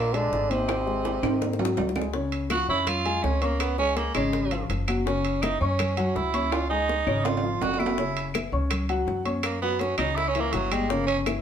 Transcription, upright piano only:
0.13 G#3 G#4
0.50 D#4 D#5
0.87 G#3 G#4
1.23 D#3 D#4
1.59 F#3 F#4
1.96 G#3 G#4
2.14 C#3 C#4 C#5
2.50 F3 F4 F5
2.69 C#4 C#5 C#6
3.05 G#3 G#4 G#5
3.41 C#4 C#5 C#6
3.78 G#3 G#4 G#5
4.15 C#3 C#4 C#5
4.52 F3 F4 F5
4.88 F#3 F#4 F#5
5.06 C#3 C#4 C#5
5.42 E3 E4 E5
5.61 C#4 C#5 C#6
5.97 F#3 F#4 F#5
6.34 C#4 C#5 C#6
6.70 G#3 G#4 G#5
7.07 C#3 C#4 C#5
7.43 F3 F4 F5
7.79 F#3 F#4 F#5
7.98 C#3 C#4 C#5
8.35 E3 E4 E5
8.52 C#4 C#5 C#6
8.89 F#3 F#4 F#5
9.25 C#4 C#5 C#6
9.62 F#3 F#4 F#5
9.99 C#3 C#4 C#5
10.35 E3 E4 E5
10.71 G3 G4 G5
10.90 C#3 C#4 C#5
11.26 E3 E4 E5

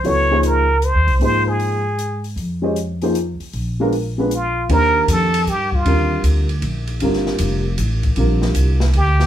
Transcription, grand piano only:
0.04 F#3 B3 E4 A4 C#5
0.30 F3 A#3 D#4 G#4 C5
1.20 F3 A#3 D#4 G#4 C5
2.62 G#3 C#4 G4 C5 D#5
3.02 F3 A#3 D#4 G#4 C5
3.80 G#3 B3 D4 F4 A#4
4.18 G#3 B3 D4 F4 B4
4.69 D#3 A#3 D4 G4 C5
5.86 D3 G3 C4 F4 A#4
7.02 D3 G3 C4 F4 A#4
8.17 D3 G3 C4 F4 A#4

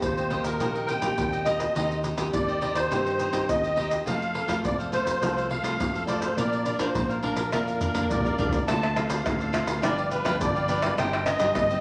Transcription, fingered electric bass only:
0.03 D#2
0.44 D#2
0.60 A#1
1.02 A#1
1.18 D#2
1.76 D#2
2.18 D#2
2.34 D#2
2.75 D#2
2.91 G2
3.33 G2
3.49 D#2
4.07 F2
4.48 F2
4.64 F2
5.06 F2
5.21 C2
5.63 C2
5.79 F2
6.37 A#1
6.79 A#1
6.95 A#1
7.36 A#1
7.53 F2
7.94 F2
8.10 A1
8.25 A#1
8.38 C2
8.52 D2
8.68 D2
9.09 D2
9.25 D2
9.67 D2
9.83 G1
10.25 D2
10.41 G1
10.98 G1
11.39 G1
11.55 G1

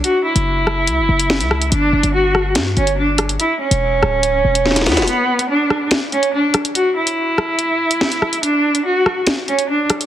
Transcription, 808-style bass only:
0.35 F#1
0.88 C#2
0.98 F#1
1.09 F#1
1.40 C#2
1.72 G1
1.93 F#1
2.03 G1
2.56 G2
2.77 G1
3.71 E1
4.03 D1
4.45 E1
4.87 E2
4.97 E1

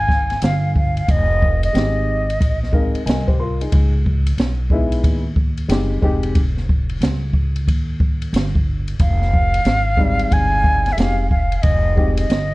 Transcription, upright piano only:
1.73 G#3 C4 D#4 G4
2.72 G#3 C4 D#4 A#4 F5
3.06 A#4 D#5 G#5
3.27 G4 C5
3.40 F4 A#4 C6
3.61 D#4 G#4
4.71 G#3 B3 D#4 E4
5.69 G#3 C4 D#4 G4
6.02 G#3 C4 D#4 G4
9.97 G3 G#3 C4 D#4
10.97 G#3 C4 D#4 G4
11.96 G#3 C4 D#4 G4

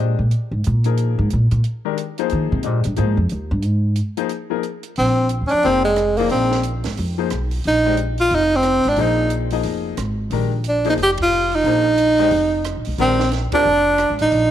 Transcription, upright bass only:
0.00 A#2
0.19 A#2
0.51 G#2
0.67 A#2
1.19 G#2
1.33 A#2
1.52 A#2
2.32 D#3
2.52 C3
2.66 A#2
2.85 G2
2.98 G#2
3.17 F2
3.32 D#2
3.51 G2
3.65 G#2
4.98 A#1
5.41 D#2
5.52 F2
5.65 F1
6.32 A#1
6.86 G#1
6.98 F2
7.32 B1
7.65 A#1
8.31 F1
8.85 G#1
8.97 A#1
9.64 F1
9.97 G#1
10.30 A#1
10.97 F1
11.64 A#1
12.31 F1
12.77 A#1
12.87 B1
12.98 A#1
13.52 muted upright bass stroke
13.65 F1
14.10 G#1
14.20 A1
14.32 A#1

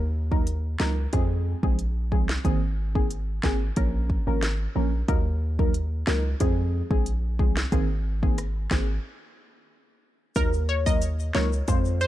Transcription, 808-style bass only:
Already playing: D#2
0.80 C#2
1.13 F2
1.63 A#1
2.12 C2
2.45 G#1
3.44 G#1
3.77 A#1
4.27 G#1
4.76 A#1
5.08 D#2
6.07 C#2
6.41 F2
6.91 A#1
7.39 C2
7.72 G#1
8.71 G#1
10.36 D#2
11.35 C#2
11.68 F2

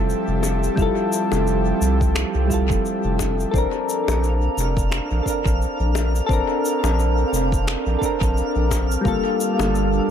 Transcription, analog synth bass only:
Already playing: F1
0.28 F1
0.78 F1
1.32 F1
1.82 C2
2.35 C2
2.70 F1
3.05 F1
3.54 A#1
4.08 A#1
4.58 F1
5.11 A#1
5.45 A#1
5.80 A#1
6.29 A#1
6.84 A#1
7.33 F1
7.87 A#1
8.21 A#1
8.56 A#1
9.05 G1
9.59 G1

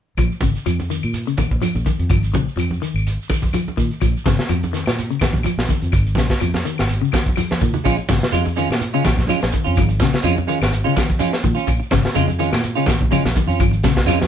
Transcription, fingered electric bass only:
0.17 A#1
0.42 G#1
0.56 muted fingered electric bass stroke
0.66 F2
1.04 A#2
1.38 A#1
1.51 A#1
1.75 A#1
1.99 F2
2.10 G#1
2.34 A#1
2.56 F2
2.94 G#1
3.77 A#2
4.02 A#1
4.26 G#1
4.38 muted fingered electric bass stroke
4.49 F2
4.87 A#2
5.21 A#1
5.34 A#1
5.58 A#1
5.82 F2
5.93 G#1
6.17 A#1
6.42 F2
6.79 G#1
7.61 A#2
7.85 A#1
8.09 G#1
8.22 muted fingered electric bass stroke
8.33 F2
8.70 A#2
9.06 A#1
9.18 A#1
9.43 A#1
9.67 F2
9.77 G#1
10.01 A#1
10.24 F2
10.61 G#1
11.45 A#2
11.68 A#1
11.92 G#1
12.06 muted fingered electric bass stroke
12.16 F2
12.53 A#2
12.88 A#1
13.01 A#1
13.25 A#1
13.47 F2
13.59 G#1
13.84 A#1
14.05 F2

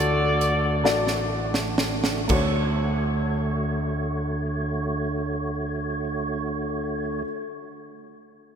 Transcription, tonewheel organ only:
Already playing: D3 A3 D4 F#4
2.29 D3 A3 F#4 C#5

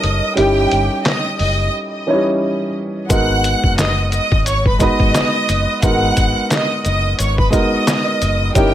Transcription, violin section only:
Already playing: D#5 D#6
0.38 G4 G5
1.04 D#5 D#6
1.39 D#5 D#6
3.11 F#5 F#6
3.80 D#5 D#6
4.11 D#5 D#6
4.47 C#5 C#6
4.67 B4 B5
4.82 D#5 D#6
5.83 F#5 F#6
6.53 D#5 D#6
6.84 D#5 D#6
7.20 C#5 C#6
7.39 B4 B5
7.52 D#5 D#6
8.56 G4 G5

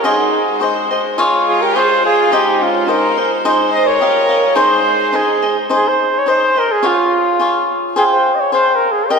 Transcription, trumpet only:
0.04 G#4
1.48 G#4
1.61 A#4
1.76 C5
2.05 G#4
2.33 G4
2.63 F4
2.89 A#4
3.73 D#5
3.87 C#5
4.56 C5
5.16 G#4
5.75 G#4
5.88 C5
6.19 C#5
6.29 C5
6.59 A#4
6.72 G#4
6.87 F4
7.98 G#4
8.12 C5
8.35 D#5
8.40 C#5
8.54 C5
8.76 A#4
8.92 G#4
9.10 D#5

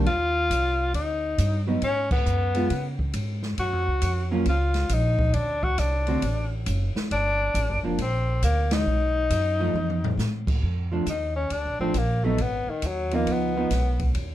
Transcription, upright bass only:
0.06 D#2
0.50 C2
0.94 D2
1.38 G2
1.82 G#2
2.26 F#2
2.70 C#3
3.14 G#2
3.58 F#2
3.73 F2
3.87 C#2
4.02 F2
4.46 C#2
4.89 A#1
5.34 D2
5.78 C2
6.22 A1
6.66 F#1
6.95 muted upright bass stroke
7.11 G1
7.54 A1
7.69 G1
7.83 F1
7.98 A#1
8.43 D2
8.86 B1
9.30 F#2
9.74 F2
10.17 A2
10.63 F2
11.06 D#2
11.50 D2
11.65 A#1
11.79 A1
11.94 A#1
12.38 G#1
12.67 muted upright bass stroke
12.83 D#2
13.27 C#2
13.71 B1
14.15 D#2

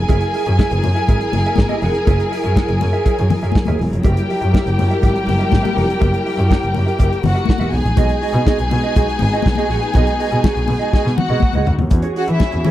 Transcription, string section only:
Already playing: F#3 E4 G#4 A#4
4.04 G3 E4 A#4
7.73 G#3 B3 D#4
11.90 E3 C#4 F#4 G#4

